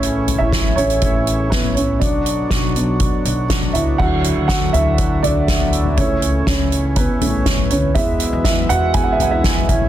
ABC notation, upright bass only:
X:1
M:4/4
L:1/16
Q:1/4=121
K:A
V:1 name="Upright bass" clef=bass
A,,,3 A,,,3 A,,,8- A,,,2 | B,,,4 B,,,4- B,,, z B,,,4 C,,2 | D,,3 D,,3 D,,8- D,,2 | C,,4 C,,4- C,, z A,,,4 D,,2 |
E,,3 E,,3 E,,8 A,,,2 |]